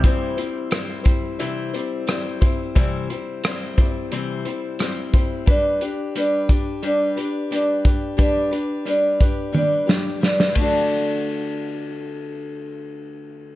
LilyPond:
<<
  \new Staff \with { instrumentName = "Steel-string acoustic guitar" } { \time 4/4 \key d \mixolydian \tempo 4 = 88 <c e g c' e' c''>8 <g c' e' c''>8 <g c' e' c''>8 <g c' e' c''>8 <c e g c' e' c''>8 <g c' e' c''>8 <g c' e' c''>8 <g c' e' c''>8 | <c e g c' e' c''>8 <g c' e' c''>8 <g c' e' c''>8 <g c' e' c''>8 <c e g c' e' c''>8 <g c' e' c''>8 <g c' e' c''>8 <g c' e' c''>8 | <g d' g' b'>8 <d' g' b'>8 <g d' g' b'>8 <d' g' b'>8 <g d' g' b'>8 <d' g' b'>8 <g d' g' b'>8 <d' g' b'>8 | <g d' g' b'>8 <d' g' b'>8 <g d' g' b'>8 <d' g' b'>8 <g d' g' b'>8 <d' g' b'>8 <g d' g' b'>8 <d a d' fis' a'>8~ |
<d a d' fis' a'>1 | }
  \new DrumStaff \with { instrumentName = "Drums" } \drummode { \time 4/4 <hh bd>8 hh8 <hh ss>8 <hh bd>8 hh8 hh8 <hh ss>8 <hh bd>8 | <hh bd>8 hh8 <hh ss>8 <hh bd>8 hh8 hh8 <hh ss>8 <hh bd>8 | <hh bd>8 hh8 hh8 <hh bd>8 hh8 hh8 hh8 <hh bd>8 | <hh bd>8 hh8 hh8 <hh bd>8 tommh8 sn8 sn16 sn16 <bd cymr>8 |
r4 r4 r4 r4 | }
>>